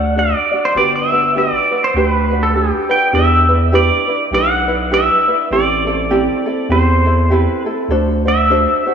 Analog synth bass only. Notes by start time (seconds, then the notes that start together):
Already playing: D2
0.75 G1
1.94 D2
3.13 E2
4.31 B1
5.51 A1
6.69 E2
7.88 D2